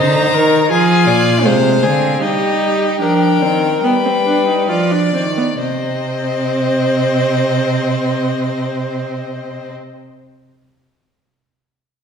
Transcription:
Already playing: cello D3, viola D#4
0.00 violin C5 A#5
0.34 cello D#3, violin A#4
0.70 cello F3, viola F4, violin G#4 G#5
1.07 cello A#2, violin D5
1.45 cello C3, viola G#3, violin C5 F5
1.83 cello D3, viola C4, violin G#4
2.21 cello G3, viola D#4, violin G4 D#5
3.01 cello F3, viola D4, violin A#4 G5
3.41 cello D#3, viola C4
3.83 cello G3, viola B3, violin B4 G5
4.05 viola C4
4.26 viola D4
4.48 viola D#4
4.69 cello F3, viola F4, violin D5
4.92 viola D4
5.14 cello D#3, viola C4
5.37 viola B3
5.60 cello C3, viola C4, violin C5 D#5

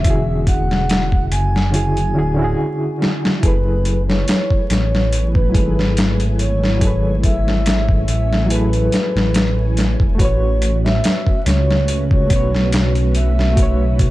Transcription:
Already playing: detuned saw bass E1, string machine G#3 E4 F#4 E5, reed electric piano C#4 E4 F#4 G#4, soft synth lead E5
0.00 reed electric piano D3 C#4
0.04 reed electric piano E4 F#4, kick, closed hi-hat
0.10 reed electric piano G#4
0.47 soft synth lead F#5, kick, closed hi-hat
0.71 snare
0.89 snare, closed hi-hat
1.12 kick
1.31 detuned saw bass F#1, soft synth lead G#5, closed hi-hat
1.56 snare
1.71 reed electric piano D3 C#4 E4 F#4, soft synth lead G#5, closed hi-hat
1.76 reed electric piano G#4
1.97 closed hi-hat
2.14 detuned saw bass D1, reed electric piano D3 C#4 E4 F#4
2.19 reed electric piano G#4
2.34 reed electric piano D3 C#4
2.39 reed electric piano E4 F#4
2.44 reed electric piano G#4
3.02 snare
3.25 snare
3.38 reed electric piano F#3 E4
3.43 detuned saw bass F#1, string machine A3 E4 B4 G#5, reed electric piano G#4 A4, soft synth lead B4, kick, closed hi-hat
3.48 reed electric piano B4
3.85 closed hi-hat
4.08 soft synth lead C#5, snare
4.28 snare, closed hi-hat
4.50 kick
4.70 detuned saw bass A1, soft synth lead C#5, snare, closed hi-hat
4.95 snare
5.12 closed hi-hat
5.34 soft synth lead B4, kick
5.50 reed electric piano F#3 E4
5.55 detuned saw bass G#1, reed electric piano G#4 A4, kick, closed hi-hat
5.59 reed electric piano B4
5.79 snare
5.97 snare, closed hi-hat
6.20 closed hi-hat
6.39 soft synth lead C#5, closed hi-hat
6.64 snare
6.77 reed electric piano F#3 E4, string machine C#5
6.81 reed electric piano G#4 A4, kick, closed hi-hat
6.87 reed electric piano B4
7.24 soft synth lead E5, kick, closed hi-hat
7.48 snare
7.66 snare, closed hi-hat
7.89 kick
8.08 detuned saw bass A1, soft synth lead E5, closed hi-hat
8.33 snare
8.46 reed electric piano F#3 E4
8.50 reed electric piano G#4 A4, soft synth lead B4, closed hi-hat
8.56 reed electric piano B4
8.73 closed hi-hat
8.92 snare, closed hi-hat
9.16 detuned saw bass A1, snare
9.34 snare, closed hi-hat
9.77 snare, closed hi-hat
10.00 detuned saw bass E1, kick
10.15 reed electric piano A3 F#4, string machine C#4 F#4
10.19 detuned saw bass A1, string machine A3 B4, reed electric piano B4, soft synth lead C#5, kick, closed hi-hat
10.25 reed electric piano C#5
10.62 closed hi-hat
10.84 soft synth lead E5, snare
11.04 snare, closed hi-hat
11.27 kick
11.46 detuned saw bass C#2, soft synth lead C#5, snare, closed hi-hat
11.71 snare
11.88 closed hi-hat
12.11 soft synth lead C#5, kick
12.26 reed electric piano A3 F#4, kick, closed hi-hat
12.30 detuned saw bass B1, reed electric piano B4
12.36 reed electric piano C#5
12.55 snare
12.73 snare, closed hi-hat
12.95 closed hi-hat
13.15 soft synth lead E5, closed hi-hat
13.39 snare
13.53 reed electric piano A3 F#4
13.57 reed electric piano B4, kick, closed hi-hat
13.63 reed electric piano C#5
13.99 soft synth lead C#5, kick, closed hi-hat

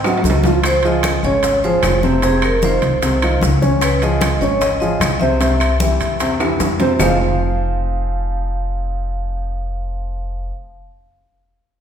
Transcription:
Already playing: upright bass G#2, tenor saxophone C4, vibraphone D#5
0.04 grand piano F#3 F#4, high bongo, high conga, high timbale, claves, maracas
0.18 low timbale
0.24 upright bass C#2, high bongo, high conga, maracas
0.30 low timbale
0.43 grand piano F3 F4, low bongo, high conga, low timbale, maracas
0.63 vibraphone C5, high bongo, high conga, high timbale, claves, maracas
0.83 grand piano F3 F4 G#4, vibraphone D#5, high conga, high timbale, maracas
1.03 high bongo, high conga, high timbale, claves, maracas
1.23 upright bass G#1, grand piano C#3 C#4 C#5, vibraphone C#5, high conga, maracas
1.43 high bongo, high conga, high timbale, maracas
1.64 grand piano F3 F4 G#4, vibraphone C5, high conga, maracas
1.83 upright bass F1, high bongo, low bongo, high conga, high timbale, low timbale, claves, maracas
2.03 grand piano C3 C4 C5, high conga, maracas
2.22 grand piano C3 C4 C5, vibraphone G#4, high bongo, high conga, high timbale, maracas
2.42 vibraphone A#4, high bongo, high conga, high timbale, claves, maracas
2.62 grand piano D#3 D#4 F4, vibraphone C5, high bongo, high conga, maracas
2.82 upright bass C2, high bongo, high conga, high timbale, maracas
3.02 grand piano C3 C4 C5, high bongo, high conga, high timbale, maracas
3.22 grand piano D#3 D#4 F4, high bongo, high conga, high timbale, claves, maracas
3.41 upright bass C#2, high bongo, low bongo, high conga, maracas
3.62 grand piano C#3 C#4 C#5, high conga, maracas
3.81 vibraphone B4, high bongo, high conga, high timbale, claves, maracas
4.02 grand piano F3 F4 G#4, vibraphone D#5, high conga, high timbale, maracas
4.21 high bongo, high conga, high timbale, claves, maracas
4.41 upright bass G#1, grand piano C#3 C#4 C#5, vibraphone C#5, high conga, maracas
4.61 vibraphone D#5, high bongo, high conga, high timbale, maracas
4.80 grand piano F3 F4 G#4, vibraphone D#5, high conga, maracas
5.00 upright bass C2, high bongo, low bongo, high conga, high timbale, claves, maracas
5.20 grand piano C3 C4 C5, vibraphone E5, high conga, maracas
5.40 grand piano C3 C4 C5, high bongo, high conga, high timbale, maracas
5.60 high bongo, high conga, high timbale, claves, maracas
5.80 grand piano E3 E4 G4, high bongo, high conga, maracas
6.00 upright bass E2, high bongo, high conga, high timbale, maracas
6.20 grand piano C3 C4 C5, high bongo, high conga, high timbale, maracas
6.40 grand piano E3 E4 G4, high bongo, high conga, high timbale, claves, maracas
6.60 upright bass F2, high bongo, low bongo, high conga, high timbale, maracas
6.80 grand piano C3 C4 C5, high bongo, high conga, low timbale, maracas
6.99 upright bass F1, grand piano F3 C4 D#4 F4 G#4 C5, vibraphone F5, low bongo, low conga, low timbale, claves, maracas

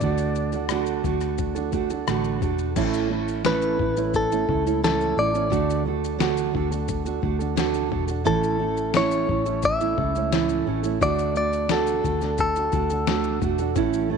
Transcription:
Already playing: clean electric guitar D5
0.01 fingered electric bass D2, steel-string acoustic guitar D3 A3 D4 F#4 A4, kick, shaker
0.18 shaker
0.35 shaker
0.52 steel-string acoustic guitar D4 F#4 A4, shaker
0.69 steel-string acoustic guitar D3 A3 D4 F#4 A4, cross-stick, shaker
0.86 shaker
1.04 fingered electric bass D2, steel-string acoustic guitar A3 D4 F#4 A4, kick, shaker
1.21 cross-stick, shaker
1.38 kick, shaker
1.55 steel-string acoustic guitar D4 F#4 A4, shaker
1.72 steel-string acoustic guitar A3 D4 F#4 A4, kick, shaker
1.90 steel-string acoustic guitar D4 F#4 A4, shaker
2.07 fingered electric bass A1, steel-string acoustic guitar D3 A3 D4 F#4 A4, cross-stick, shaker
2.24 shaker
2.41 fingered electric bass E1, steel-string acoustic guitar A3 D4 F#4 A4, kick, shaker
2.58 shaker
2.76 fingered electric bass A1, steel-string acoustic guitar A2 E3 A3 C#4 E4 A4, kick, crash, shaker
2.94 shaker
3.09 steel-string acoustic guitar A3 C#4 E4 A4
3.28 shaker
3.44 steel-string acoustic guitar A2 E3 A3 C#4 E4 A4, clean electric guitar B4, snare, shaker
3.62 shaker
3.79 fingered electric bass A1, steel-string acoustic guitar A3 C#4 E4 A4, kick
3.96 steel-string acoustic guitar A3 C#4 E4 A4, shaker
4.14 clean electric guitar A4, kick, shaker
4.30 steel-string acoustic guitar A3 C#4 E4 A4, shaker
4.47 fingered electric bass C#2, steel-string acoustic guitar A3 C#4 E4 A4, kick
4.65 steel-string acoustic guitar A3 C#4 E4 A4, shaker
4.83 steel-string acoustic guitar A2 E3 A3 C#4 E4 A4, clean electric guitar A4, snare, shaker
5.01 shaker
5.17 fingered electric bass A1, steel-string acoustic guitar A3 C#4 E4 A4, clean electric guitar D5
5.34 steel-string acoustic guitar A3 C#4 E4 A4, shaker
5.50 fingered electric bass D2, steel-string acoustic guitar D3 A3 D4 F#4 A4, kick, shaker
5.70 shaker
5.85 steel-string acoustic guitar A3 D4 F#4 A4
6.04 shaker
6.19 steel-string acoustic guitar D3 A3 D4 F#4 A4, snare, shaker
6.37 shaker
6.53 fingered electric bass D2, steel-string acoustic guitar A3 D4 F#4 A4, kick
6.71 steel-string acoustic guitar D4 F#4 A4, shaker
6.88 kick, shaker
7.05 steel-string acoustic guitar D4 F#4 A4, shaker
7.22 fingered electric bass D2, steel-string acoustic guitar A3 D4 F#4 A4, kick
7.39 steel-string acoustic guitar D4 F#4 A4, shaker
7.56 steel-string acoustic guitar D3 A3 D4 F#4 A4, snare, shaker
7.74 shaker
7.90 fingered electric bass E1, steel-string acoustic guitar A3 D4 F#4 A4, kick
8.07 steel-string acoustic guitar D4 F#4 A4, shaker
8.24 fingered electric bass A1, steel-string acoustic guitar A2 E3 A3 C#4 E4 A4, clean electric guitar A4, kick, shaker
8.44 shaker
8.59 steel-string acoustic guitar A3 C#4 E4 A4
8.77 shaker
8.94 steel-string acoustic guitar A2 E3 A3 C#4 E4 A4, clean electric guitar C#5, snare, shaker
9.11 shaker
9.29 fingered electric bass A1, steel-string acoustic guitar A3 C#4 E4 A4, kick
9.46 steel-string acoustic guitar A3 C#4 E4 A4, shaker
9.63 clean electric guitar E5, kick, shaker
9.80 steel-string acoustic guitar A3 C#4 E4 A4, shaker
9.96 fingered electric bass C#2, steel-string acoustic guitar A3 C#4 E4 A4, kick
10.15 steel-string acoustic guitar A3 C#4 E4 A4, shaker
10.32 steel-string acoustic guitar A2 E3 A3 C#4 E4 A4, snare, shaker
10.49 shaker
10.67 fingered electric bass A1, steel-string acoustic guitar A3 C#4 E4 A4
10.83 steel-string acoustic guitar A3 C#4 E4 A4, shaker
11.00 fingered electric bass D2, steel-string acoustic guitar D3 A3 D4 F#4 A4, clean electric guitar D5, kick, shaker
11.19 shaker
11.34 steel-string acoustic guitar A3 D4 F#4 A4, clean electric guitar D5, shaker
11.53 shaker
11.69 steel-string acoustic guitar D3 A3 D4 F#4 A4, clean electric guitar A4, snare, shaker
11.87 shaker
12.03 fingered electric bass D2, steel-string acoustic guitar A3 D4 F#4 A4, kick, shaker
12.21 steel-string acoustic guitar D4 F#4 A4, snare, shaker
12.38 clean electric guitar A4, kick, shaker
12.56 steel-string acoustic guitar D4 F#4 A4, shaker
12.72 fingered electric bass D2, steel-string acoustic guitar A3 D4 F#4 A4, kick, shaker
12.90 steel-string acoustic guitar D4 F#4 A4, shaker
13.07 steel-string acoustic guitar D3 A3 D4 F#4 A4, snare, shaker
13.24 shaker
13.41 fingered electric bass E1, steel-string acoustic guitar A3 D4 F#4 A4, kick, shaker
13.58 steel-string acoustic guitar D4 F#4 A4, shaker
13.75 fingered electric bass A1, steel-string acoustic guitar A2 E3 A3 C#4 E4 A4, kick, shaker
13.93 shaker
14.10 steel-string acoustic guitar A3 C#4 E4 A4

